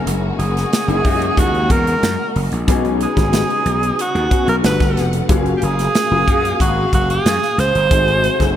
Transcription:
Already playing: C#3 G#3 A#3 C#4 D#4 E4 F#4 G#4
0.06 F#1, closed hi-hat
0.39 F#1 G#4, closed hi-hat
0.57 snare, closed hi-hat
0.73 snare, closed hi-hat
0.87 F#1 A#3 C#4 D#4 E4 G#4, closed hi-hat
1.04 F#2 A#3 C#4 D#4 E4 G4, kick, open hi-hat
1.11 G#4
1.22 closed hi-hat
1.37 D#2 F#4, kick, closed hi-hat
1.55 closed hi-hat
1.70 E2 A#4, kick, closed hi-hat
1.87 closed hi-hat
2.03 F#2, snare, closed hi-hat
2.36 F#1, open hi-hat
2.52 A#1, closed hi-hat
2.67 B1 C#3 B3 C#4 D#4 F#4 G#4, kick, closed hi-hat
2.85 closed hi-hat
3.01 G#4, closed hi-hat
3.15 G#1 B3 C#4 D#4 F#4 G4, kick, snare, closed hi-hat
3.23 G#4
3.33 snare, closed hi-hat
3.50 closed hi-hat
3.65 B1, closed hi-hat
3.83 closed hi-hat
3.99 F#4, closed hi-hat
4.15 D#2, closed hi-hat
4.29 B3 C#4 D#4 F#4 G#4, kick, closed hi-hat
4.48 B1 A#4, closed hi-hat
4.63 G1 B2 A3 B3 D4 F#4 G4 A4 B4 F#5, snare, closed hi-hat
4.80 kick, snare, closed hi-hat
4.96 F1, snare, closed hi-hat
5.13 closed hi-hat
5.28 F#1 A#2 G#3 A#3 C#4 F4 F#4 G4 F5, kick, closed hi-hat
5.36 G#4
5.46 closed hi-hat
5.57 G4
5.62 F#1 G#4, closed hi-hat
5.79 snare, closed hi-hat
5.95 snare, closed hi-hat
6.11 F#1 A#3 C#4 F4 F#4 G#4
6.27 F#2 A#3 C#4 F#4 G#4 F5, kick, closed hi-hat
6.45 closed hi-hat
6.60 G#1 F#4, kick, closed hi-hat
6.93 F#1 F#4, kick, closed hi-hat
7.10 G#4, closed hi-hat
7.25 F#2, snare, closed hi-hat
7.42 snare
7.58 C#2 C5, snare, closed hi-hat
7.75 G1, closed hi-hat
7.90 G#1 C3 F#3 A3 C4 D#4 F#4 G#4, kick, closed hi-hat
8.08 closed hi-hat
8.24 closed hi-hat
8.39 F#1 A3 C4 D#4 F#4 G#4, kick, snare, closed hi-hat

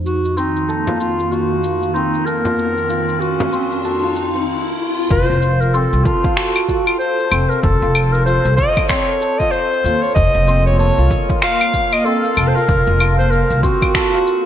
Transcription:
Already playing: F2 D#4 C5
0.05 F#4, riser, shaker
0.25 D#3 A#3, shaker
0.37 C4 D#4, shaker
0.41 F5
0.56 shaker
0.68 A4, shaker
0.87 F4, frame drum
1.00 F4, shaker
1.19 shaker
1.32 F4 F#4, shaker
1.64 shaker
1.83 shaker
1.94 C4 D#4, shaker
2.14 shaker
2.26 A4 A#4, shaker
2.45 F4, frame drum, shaker
2.59 shaker
2.77 shaker
2.89 F4, shaker
3.09 shaker
3.20 F#4, shaker
3.40 frame drum
3.53 C4, shaker
3.72 shaker
3.84 F#4 A4, shaker
4.04 F4
4.16 shaker
4.35 C4, shaker
5.11 F1 F4 C5, kick, shaker
5.30 F1
5.42 shaker
5.60 A#4, shaker
5.74 C4 A4, shaker
5.93 C2, shaker
6.00 A4
6.04 F4 A4, kick, shaker
6.24 F4, kick, shaker
6.36 F#4, finger snap, shaker
6.56 claves, shaker
6.69 F4, kick, shaker
6.86 F4, claves, shaker
6.99 C5, shaker
7.19 shaker
7.31 F1 C4, claves, shaker
7.49 A#4, shaker
7.62 F1 A4, kick, shaker
7.82 F1 F4
7.95 claves, shaker
8.12 A#4, shaker
8.26 F4 C5, shaker
8.45 C2, shaker
8.57 D#5, kick, shaker
8.77 kick, claves, shaker
8.88 C4 C#5, finger snap, kick, shaker
9.09 shaker
9.21 A4, shaker
9.39 F4 D#5, kick, shaker
9.52 C5, shaker
9.72 shaker
9.84 D#2 F4, shaker
10.02 C#5, shaker
10.15 F1 D#5, kick, shaker
10.32 F1 A#3
10.48 C4, shaker
10.66 C#5, shaker
10.74 F5
10.79 A4 C#5, shaker
10.98 C2 F4, shaker
11.11 kick, shaker
11.30 kick, shaker
11.42 F4 F5, finger snap, shaker
11.61 claves, shaker
11.74 kick, shaker
11.93 D#5, claves, shaker
12.05 C4 A4, shaker
12.25 shaker
12.37 F1 A4, claves, shaker
12.48 C5
12.56 F4 A#4, shaker
12.69 F1, kick, shaker
12.87 F1
13.00 F4, claves, shaker
13.18 C5, shaker
13.31 A#4, shaker
13.50 C2, shaker
13.63 C4 F#4, kick, shaker
13.82 kick, claves, shaker
13.95 A4, finger snap, kick, shaker
14.14 F4, shaker
14.27 shaker

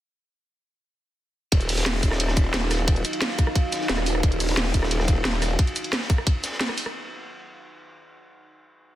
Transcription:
1.52 D#1 D#4 F#4 F5, kick, closed hi-hat, ride
1.61 closed hi-hat, ride, cabasa
1.69 closed hi-hat, open hi-hat, cabasa
1.78 snare, closed hi-hat
1.85 snare, closed hi-hat, ride
2.02 D#1, kick, closed hi-hat, ride, cabasa
2.11 cross-stick, snare
2.20 closed hi-hat, ride
2.28 cross-stick, snare
2.37 kick, closed hi-hat, ride, cabasa
2.44 ride
2.53 D#1, snare, closed hi-hat, ride
2.71 cross-stick, snare, open hi-hat, ride, cabasa
2.78 ride
2.88 kick, closed hi-hat, ride
2.96 closed hi-hat, cabasa
3.04 closed hi-hat, ride, cabasa
3.13 closed hi-hat
3.21 snare, closed hi-hat, ride
3.30 snare
3.38 kick, cross-stick, closed hi-hat, ride, cabasa
3.47 cross-stick
3.55 kick, closed hi-hat, ride
3.72 snare, closed hi-hat, ride, cabasa
3.81 snare
3.89 D#1, snare, closed hi-hat, ride
3.98 cross-stick
4.06 open hi-hat, ride, cabasa
4.15 cross-stick
4.23 D#1, kick, closed hi-hat, ride
4.31 closed hi-hat, ride, cabasa
4.40 closed hi-hat, open hi-hat, cabasa
4.49 snare, closed hi-hat
4.57 snare, closed hi-hat, ride
4.74 D#1, kick, closed hi-hat, ride, cabasa
4.83 cross-stick, snare
4.91 closed hi-hat, ride
5.00 cross-stick, snare
5.08 kick, closed hi-hat, ride, cabasa
5.16 ride
5.25 D#1, snare, closed hi-hat, ride
5.42 cross-stick, snare, open hi-hat, ride, cabasa
5.50 ride
5.59 kick, closed hi-hat, ride
5.67 closed hi-hat, cabasa
5.76 closed hi-hat, ride, cabasa
5.84 closed hi-hat
5.92 snare, closed hi-hat, ride
6.02 snare
6.10 kick, cross-stick, closed hi-hat, ride, cabasa
6.18 cross-stick
6.27 kick, closed hi-hat, ride
6.43 snare, closed hi-hat, ride, cabasa
6.52 snare
6.60 snare, closed hi-hat, ride
6.69 cross-stick
6.77 open hi-hat, ride, cabasa
6.86 cross-stick

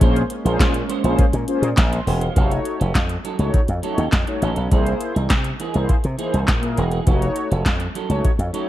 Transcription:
Already playing: C#5
0.00 A#1 G#3 A#3 C#4 F4 G#4 C5, kick, closed hi-hat
0.16 muted clean electric guitar stroke, closed hi-hat
0.30 muted clean electric guitar stroke, closed hi-hat
0.44 A#1 G#3 A#3 C#4 F4 G#4 C5, closed hi-hat
0.60 A#2, muted clean electric guitar stroke, kick, snare, clap, closed hi-hat
0.74 muted clean electric guitar stroke, closed hi-hat
0.89 G#3 C#4 F4 C5, closed hi-hat
1.03 A#1 G#3 A#3 C#4 F4 G#4 C5, closed hi-hat
1.18 muted clean electric guitar stroke, kick, closed hi-hat
1.33 A#2, muted clean electric guitar stroke, closed hi-hat
1.48 A#3 C#4 F4 G#4 C5, closed hi-hat
1.62 A#2, muted clean electric guitar stroke, closed hi-hat
1.77 A#1, muted clean electric guitar stroke, kick, snare, clap, closed hi-hat
1.91 C6, muted clean electric guitar stroke, closed hi-hat
2.06 E1 G#3 C#4 F4 C5 G#5, open hi-hat
2.21 G#3 C#4 F4 C5 F5, closed hi-hat
2.35 F1 F#3 A3 C#4 D#4 F#4 A4 C#5, kick, closed hi-hat
2.51 muted clean electric guitar stroke, closed hi-hat
2.65 muted clean electric guitar stroke, closed hi-hat
2.80 F1 F#3 C#4 D#4 A4, closed hi-hat
2.95 F2, muted clean electric guitar stroke, kick, snare, clap, closed hi-hat
3.09 muted clean electric guitar stroke, closed hi-hat
3.24 F#3 C#4 D#4 F#4 A4 C#5, closed hi-hat
3.39 C#2 F#3 A3 C#4 D#4 F#4 A4 C#5, closed hi-hat
3.53 muted clean electric guitar stroke, kick, closed hi-hat
3.68 F2, muted clean electric guitar stroke, closed hi-hat
3.82 F#3 A3 C#4 D#4 F#4 A4 C#5, closed hi-hat
3.98 D#2 F#3 C#4 D#4 A4, closed hi-hat
4.12 F2, muted clean electric guitar stroke, kick, snare, clap, closed hi-hat
4.27 A3 D#4 F#4 C#5, muted clean electric guitar stroke, closed hi-hat
4.42 A1 F#3 C#4 D#4 A4, closed hi-hat
4.56 B1 F#3 C#4 D#4 A4, closed hi-hat
4.71 C2 E3 A#3 D#4 E4 G#4 C5, kick, closed hi-hat
4.86 muted clean electric guitar stroke, closed hi-hat
5.00 muted clean electric guitar stroke, closed hi-hat
5.15 C2 E3 A#3 D#4 G#4, closed hi-hat
5.30 C3, muted clean electric guitar stroke, kick, snare, clap, closed hi-hat
5.44 muted clean electric guitar stroke, closed hi-hat
5.59 E3 A#3 D#4 G#4 C5, closed hi-hat
5.74 C2 E3 A#3 D#4 E4 G#4 C5, closed hi-hat
5.89 muted clean electric guitar stroke, kick, closed hi-hat
6.04 C3, muted clean electric guitar stroke, closed hi-hat
6.18 E3 A#3 D#4 E4 G#4 C5, closed hi-hat
6.32 C2 E3 A#3 D#4 G#4, closed hi-hat
6.48 A#2, muted clean electric guitar stroke, kick, snare, clap, closed hi-hat
6.62 A#3 E4 G#4 A#4, muted clean electric guitar stroke, closed hi-hat
6.77 E1 E3 A#3 D#4 G#4, closed hi-hat
6.92 E3 A#3 D#4 G#4, closed hi-hat
7.06 F1 F#3 A3 C#4 D#4 F#4 A4 C#5, kick, closed hi-hat
7.21 muted clean electric guitar stroke, closed hi-hat
7.36 muted clean electric guitar stroke, closed hi-hat
7.51 F1 F#3 C#4 D#4 A4, closed hi-hat
7.66 F2, muted clean electric guitar stroke, kick, snare, clap, closed hi-hat
7.80 muted clean electric guitar stroke, closed hi-hat
7.95 F#3 C#4 D#4 F#4 A4 C#5, closed hi-hat
8.09 C#2 F#3 A3 C#4 D#4 F#4 A4 C#5, closed hi-hat
8.24 muted clean electric guitar stroke, kick, closed hi-hat
8.39 F2, muted clean electric guitar stroke, closed hi-hat
8.53 F#3 A3 C#4 D#4 F#4 A4 C#5, closed hi-hat

